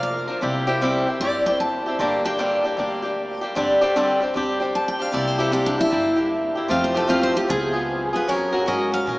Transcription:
Already playing: F1 F3 A#3 D4 A#4
0.03 F5
0.27 F3 A#3 D4 A#4
0.41 C2 C3 G3 C4 E4 G4
0.67 C3 G3 C4 E4 G4
0.81 C3 G3 C4 E4 G4
1.06 C4 E4 G4
1.20 G1 G3 C4 E4 G4 D5
1.46 C4 E4 G4 G5
1.60 A5
1.86 C4 E4 G4
1.99 G1 G2 D3 G3 A#3 D4 G4
2.25 G2 D3 G3 A#3 D4 G4 G5
2.38 G2 D3 G3 A#3 D4 G4
2.64 G3 A#3 D4 G4
2.77 D2 G3 A#3 D4 G4
3.02 G3 A#3 D4 G4
3.41 G3 A#3 D4 G4
3.55 G1 G2 D3 G3 C4 D4 G4
3.81 G2 D3 G3 C4 D4 G4
3.96 G2 D3 G3 C4 D4 G4
4.20 G3 C4 D4 G4
4.34 D2 G3 C4 D4 G4
4.60 G3 C4 D4 G4
4.75 A5
4.88 G5
4.99 G3 C4 D4 G4 F5
5.12 C2 C3 G3 A#3 E4 G4 D5
5.27 C5
5.38 C3 G3 A#3 E4 G4 A4
5.51 C3 G3 A#3 E4 G4
5.66 D4
5.77 A#3 E4 G4
5.90 G1 G3 A#3 E4 G4
6.16 A#3 E4 G4
6.55 A#3 E4 G4
6.68 F2 F3 A3 C4 F4 G4 F5
6.84 C5
6.94 F3 A3 C4 F4 G4 A4
7.07 F3 A3 C4 F4 G4 F5
7.23 C5
7.33 C4 F4 G4
7.47 C#2 F3 B3 F4 G#4
7.72 B3 F4 G#4
8.13 B3 F4 G#4 B4
8.27 F#2 F#3 C#4 F#4 A#4 C#5
8.52 F#3 C#4 F#4 A#4
8.66 G#2 F#3 C#4 F#4 A#4 D#5
8.92 C#4 F#4 A#4 F5
9.06 A#2 F#3 C#4 F#4 A#4

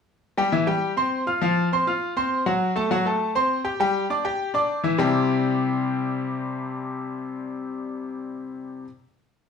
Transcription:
0.38 G3 G4 G5
0.52 E3 E4 E5
0.67 G3 G4 G5
0.97 C4 C5 C6
1.27 F4 F5 F6
1.42 F3 F4 F5
1.72 C4 C5 C6
1.87 F4 F5 F6
2.17 C4 C5 C6
2.46 F#3 F#4 F#5
2.76 A3 A4 A5
2.91 F#3 F#4 F#5
3.06 A3 A4 A5
3.35 C4 C5 C6
3.64 G4 G5 G6
3.80 G3 G4 G5
4.10 D4 D5 D6
4.25 G4 G5 G6
4.54 D4 D5 D6
4.84 E3 E4 E5
4.98 C3 G3 C4 D4 E4 G4

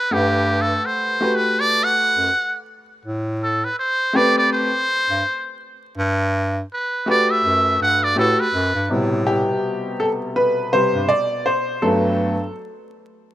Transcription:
Already playing: B4
0.11 G2 A3 G4 B4 F#5
0.61 A4
0.86 C5
1.21 A3 F#4 G4 B4
1.35 B4
1.60 D5
1.84 F#5
2.17 F#2
3.05 A2
3.43 A4
3.64 B4
3.79 C5
4.13 A3 C4 G4 B4 D5
4.38 D5
4.53 C5
5.09 G2
5.98 G2
6.73 B4
7.06 A3 F#4 G4 B4 D5
7.30 E5
7.44 F#2
7.80 G2 F#5
8.03 D5
8.16 A2 A3 F#4 G4 A4 B4
8.40 B4
8.54 F#2
8.75 G2
8.90 A2 B2 C3 G3
9.27 G4
10.00 A4
10.36 B4
10.73 C3 G3 B4 C5
10.94 G2
11.09 D5
11.46 C5
11.82 G2 F#3 A3 B3 A4

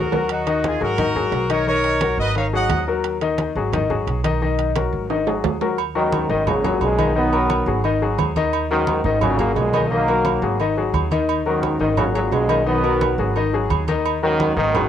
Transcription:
Already playing: D#2 F#4 A#4
0.12 F#3 F#4 A#4, high conga, low timbale
0.29 D#4 F#4, high conga, high timbale
0.47 D#3 D#4 D#5, high conga, high timbale
0.64 F4 G#4, high conga, high timbale
0.81 G#1 F#3 F#4 G#4 A#4, high conga
0.98 D#3 D#4 D#5, high conga, low conga, high timbale
1.16 F#3 F#4 G#4, high conga, low conga
1.32 B1, high conga, high timbale, low timbale
1.50 D#3 D#4 A#4 C#5 D#5, high timbale
1.67 D#3 D#4 A#4 C#5 D#5, high conga
1.84 high conga, high timbale
2.01 F#3 F#4 A#4, high conga, high timbale
2.18 G#1 B4 D#5, high conga
2.35 D#3 D#4 C#5 D#5 F5, high conga, high timbale
2.53 F#3 F#4 G#4 D#5 F#5, high conga
2.69 D#2, high conga, high timbale, low timbale
2.88 F#3 F#4 A#4
3.04 high conga, high timbale
3.21 D#3 D#4 D#5, high conga, high timbale
3.38 high conga, high timbale
3.55 G#1 F#3 F#4 G#4, high conga
3.73 D#3 D#4 D#5, high conga, low conga, high timbale
3.90 F#3 F#4 G#4, high conga, low conga
4.07 B1, high conga, high timbale
4.24 D#3 D#4 D#5, high conga, high timbale
4.41 D#3 D#4 D#5, high conga
4.59 high conga, high timbale
4.75 F#3 F#4 A#4, high conga, high timbale
4.92 G#1, high conga
5.10 D#3 D#4 D#5, high conga, high timbale
5.27 F#3 F#4 G#4, high conga, low timbale
5.44 D#2, high conga, low timbale
5.61 F#3 F#4 A#4, low timbale
5.78 high conga, low agogo
5.95 F#2 G#2 D#3 F#3 F#4 A#4, high conga
6.12 high conga, low agogo
6.29 G#1 D#3 D#4 D#5, high conga
6.47 F#2 A#2 C#3 F#3 F#4 G#4, high conga, low conga, low agogo
6.64 F#3 F#4 G#4, high conga, low conga, low agogo
6.81 B1 B2 C#3 G#3, high conga, low agogo
6.98 D#3 D#4 D#5, high conga, low agogo
7.15 D#3 F#3 B3 D#4 D#5, high conga
7.33 F#3 F#4 A#4, high conga, low agogo
7.50 high conga, low agogo
7.66 G#1 F#3 F#4 G#4, high conga
7.84 D#3 D#4 D#5, high conga, low agogo
8.02 F#3 F#4 G#4, high conga
8.18 D#2, high conga, low timbale, low agogo
8.36 D#3 D#4 D#5, high conga, low agogo
8.53 high conga, low agogo
8.71 F#2 G#2 D#3 F#3 F#4 A#4, high conga
8.87 high conga, low agogo
9.04 G#1 D#3 D#4 D#5, high conga
9.21 F#2 A#2 C#3 F#3 F#4 G#4, high conga, low conga, low agogo
9.38 F#3 A#3 F#4 G#4, high conga, low conga, low agogo
9.56 B1 B2 C#3 G#3, high conga, low timbale, low agogo
9.73 D#3 D#4 D#5, high conga, low agogo
9.90 D#3 F#3 A#3 D#4 D#5, high conga
10.08 F#3 F#4 A#4, high conga, low agogo
10.25 high conga, low agogo
10.42 G#1 F#3 F#4 G#4, high conga
10.59 D#3 D#4 D#5, high conga, low agogo
10.77 F#3 F#4 G#4, high conga
10.93 D#2, high conga, low agogo
11.11 D#3 D#4 D#5, high conga, low agogo
11.29 high conga, low agogo
11.46 F#2 G#2 D#3 F#3 F#4 A#4, high conga
11.63 high conga, low agogo
11.80 G#1 D#3 D#4 D#5, high conga
11.97 F#2 A#2 C#3 F#3 F#4 G#4, high conga, low conga, low agogo
12.15 F#3 F#4 G#4, high conga, low agogo
12.32 B1 B2 C#3 G#3, high conga, low timbale, low agogo
12.49 D#3 D#4 D#5, low agogo
12.66 D#3 F#3 B3 D#4 D#5, high conga
12.84 F#3 F#4 A#4, high conga, low agogo
13.01 high conga, low agogo
13.18 G#1 F#3 F#4 G#4, high conga
13.36 D#3 D#4 D#5, high conga, low agogo
13.53 F#3 F#4 G#4, high conga
13.70 D#2, high conga, low agogo
13.87 D#3 D#4 D#5, high conga, low agogo
14.05 high conga, low agogo
14.22 F#2 G#2 D#3 F#3 F#4 A#4, high conga
14.39 high conga, low agogo
14.56 G#1 F#2 B2 D#3 D#4 D#5, high conga
14.74 F#3 F#4 G#4, high conga, low conga, low agogo

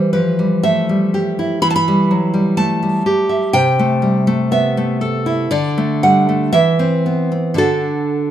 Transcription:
Already playing: E3 G3 C5
0.13 F3 B4
0.39 G3
0.63 A3 E5
0.89 G3
1.14 G4
1.39 E4
1.62 E3 B5
1.70 A5
1.76 B5
1.88 G3
2.11 F#3
2.34 G3
2.57 A3 A5
2.83 G3
3.06 G4
3.29 E5
3.53 C3 G5
3.79 A3
4.02 G3
4.27 A3
4.51 B3 E5
4.77 A3
5.01 A4
5.26 E4
5.51 D3 D5
5.78 A3
6.03 G3 F#5
6.29 A3
6.53 E3 E5
6.79 C4
7.06 B3
7.32 C4
7.54 D3 D4 F#4
7.58 A4

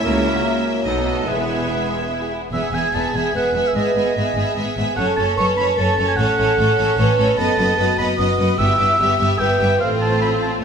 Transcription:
Already playing: E4 E5
0.03 C#2 C#3 F#3 A#3 A#4
0.15 C#4
0.26 E4
0.35 F#4
0.44 E4
0.55 C#4
0.66 A#3
0.77 C#4
0.85 B1 B2 A3 B3 D#4 A4 D#5
0.96 D#4
1.07 F#4
1.17 A4
1.26 E1 E2 E3 G#3 E4 G#4 E5
1.39 B3
1.49 E4
1.59 G#4
1.70 E4
1.82 B3
1.91 G#3
2.02 B3
2.12 E4
2.22 G#4
2.33 E4
2.43 B3
2.52 E1 E2 B3 G#4 E5
2.72 E1 E2 B3 G#4 E5 G#5
2.94 E1 E2 B3 G#4 E5 A5
3.14 E1 E2 B3 G#4 E5 G#5
3.34 E1 E2 B3 G#4 B4 E5 F#5
3.54 E1 E2 B3 G#4 E5
3.67 E5
3.75 G#1 G#2 B3 G#4 B4 D#5 E5
3.95 G#1 G#2 B3 G#4 E5
4.15 G#1 G#2 B3 G#4 E5
4.35 G#1 G#2 B3 G#4 E5
4.56 G#1 G#2 B3 G#4 E5
4.77 G#1 G#2 B3 G#4 E5
4.96 F#1 F#2 C#4 A4 C#5 F#5
5.16 F#1 F#2 C#4 A4 C#5 A5
5.37 F#1 F#2 C#4 A4 B4 C#5 C#6
5.57 F#1 F#2 C#4 A4 C#5 B5
5.77 F#1 F#2 C#4 A4 C#5 A5
5.97 F#1 F#2 C#4 A4 C#5
6.08 G#5
6.16 A1 A2 C#4 A4 C#5 F#5
6.38 A1 A2 C#4 A4 C#5
6.58 A1 A2 C#4 A4 C#5
6.78 A1 A2 C#4 A4 C#5
6.97 A1 A2 C#4 A4 B4 C#5
7.18 A1 A2 C#4 A4 C#5
7.37 F#1 F#2 B3 A4 B4 D#5 A5
7.57 F#1 F#2 B3 B4 D#5
7.78 F#1 F#2 B3 F#4 B4 D#5
7.98 F#1 F#2 B3 B4 D#5 B5
8.18 F#1 F#2 B3 B4 D#5 D#6
8.39 F#1 F#2 B3 B4 D#5
8.58 G1 G2 B3 E4 G4 E5 E6
8.78 G1 G2 B3 G4 E5
8.99 G1 G2 B3 G4 E5
9.19 G1 G2 B3 G4 E5
9.39 G1 G2 B3 G4 B4 E5 G5
9.59 G1 G2 B3 G4 E5
9.79 A1 A2 C4 F4 A4 C5 F5
10.01 A5
10.21 B5
10.42 A5

